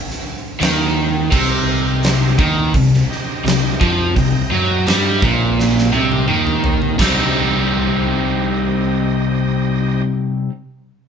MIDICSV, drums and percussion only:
0, 0, Header, 1, 2, 480
1, 0, Start_track
1, 0, Key_signature, -3, "minor"
1, 0, Tempo, 707547
1, 895, Time_signature, 4, 2, 24, 8
1, 7517, End_track
2, 0, Start_track
2, 0, Title_t, "Drums"
2, 71, Note_on_c, 9, 38, 38
2, 139, Note_off_c, 9, 38, 0
2, 415, Note_on_c, 9, 46, 60
2, 427, Note_on_c, 9, 38, 109
2, 483, Note_off_c, 9, 46, 0
2, 495, Note_off_c, 9, 38, 0
2, 896, Note_on_c, 9, 36, 106
2, 896, Note_on_c, 9, 49, 95
2, 964, Note_off_c, 9, 36, 0
2, 964, Note_off_c, 9, 49, 0
2, 1377, Note_on_c, 9, 46, 59
2, 1389, Note_on_c, 9, 38, 113
2, 1445, Note_off_c, 9, 46, 0
2, 1457, Note_off_c, 9, 38, 0
2, 1619, Note_on_c, 9, 36, 111
2, 1687, Note_off_c, 9, 36, 0
2, 1860, Note_on_c, 9, 36, 94
2, 1863, Note_on_c, 9, 46, 60
2, 1928, Note_off_c, 9, 36, 0
2, 1931, Note_off_c, 9, 46, 0
2, 1994, Note_on_c, 9, 38, 35
2, 2062, Note_off_c, 9, 38, 0
2, 2116, Note_on_c, 9, 38, 31
2, 2183, Note_off_c, 9, 38, 0
2, 2348, Note_on_c, 9, 46, 61
2, 2360, Note_on_c, 9, 38, 110
2, 2416, Note_off_c, 9, 46, 0
2, 2428, Note_off_c, 9, 38, 0
2, 2585, Note_on_c, 9, 36, 105
2, 2652, Note_off_c, 9, 36, 0
2, 2825, Note_on_c, 9, 36, 86
2, 2829, Note_on_c, 9, 46, 54
2, 2893, Note_off_c, 9, 36, 0
2, 2897, Note_off_c, 9, 46, 0
2, 3302, Note_on_c, 9, 46, 56
2, 3313, Note_on_c, 9, 38, 104
2, 3369, Note_off_c, 9, 46, 0
2, 3381, Note_off_c, 9, 38, 0
2, 3544, Note_on_c, 9, 36, 109
2, 3612, Note_off_c, 9, 36, 0
2, 3796, Note_on_c, 9, 38, 67
2, 3864, Note_off_c, 9, 38, 0
2, 3921, Note_on_c, 9, 38, 65
2, 3988, Note_off_c, 9, 38, 0
2, 4030, Note_on_c, 9, 48, 81
2, 4098, Note_off_c, 9, 48, 0
2, 4149, Note_on_c, 9, 48, 72
2, 4217, Note_off_c, 9, 48, 0
2, 4260, Note_on_c, 9, 47, 83
2, 4328, Note_off_c, 9, 47, 0
2, 4387, Note_on_c, 9, 45, 84
2, 4454, Note_off_c, 9, 45, 0
2, 4503, Note_on_c, 9, 43, 105
2, 4571, Note_off_c, 9, 43, 0
2, 4625, Note_on_c, 9, 43, 83
2, 4693, Note_off_c, 9, 43, 0
2, 4743, Note_on_c, 9, 36, 106
2, 4744, Note_on_c, 9, 55, 86
2, 4756, Note_on_c, 9, 38, 97
2, 4811, Note_off_c, 9, 36, 0
2, 4812, Note_off_c, 9, 55, 0
2, 4823, Note_off_c, 9, 38, 0
2, 7517, End_track
0, 0, End_of_file